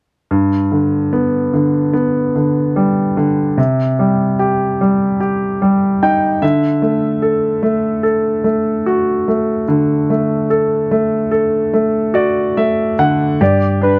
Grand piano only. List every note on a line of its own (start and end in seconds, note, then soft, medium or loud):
0.31 3.55 G2 soft
0.72 1.52 D3 soft
1.13 1.92 B3 soft
1.54 2.34 D3 soft
1.94 3.54 B3 soft
2.35 3.16 D3 soft
2.76 3.55 G3 soft
3.17 3.57 D3 soft
3.58 6.38 C3 soft
3.99 4.80 G3 soft
4.39 5.19 G4 soft
4.81 5.60 G3 soft
5.20 6.39 G4 soft
5.62 6.40 G3 soft
6.03 6.42 D#4 soft
6.03 6.40 G5 soft
6.42 9.65 D3 soft
6.42 6.80 E5 soft
6.82 7.61 A3 soft
7.22 8.02 A4 soft
7.63 8.43 A3 soft
8.03 9.64 A4 soft
8.44 9.27 A3 soft
8.86 10.47 F#4 soft
9.28 10.09 A3 soft
9.68 12.95 D3 soft
10.10 10.90 A3 soft
10.50 11.30 A4 soft
10.91 11.72 A3 soft
11.31 12.94 A4 soft
11.74 12.56 A3 soft
12.14 13.36 F#4 soft
12.14 12.54 D5 soft
12.57 13.38 A3 soft
12.57 12.96 E5 soft
12.99 13.39 D3 soft
12.99 13.38 F#5 soft
13.41 13.99 G4 soft
13.81 13.99 D4 soft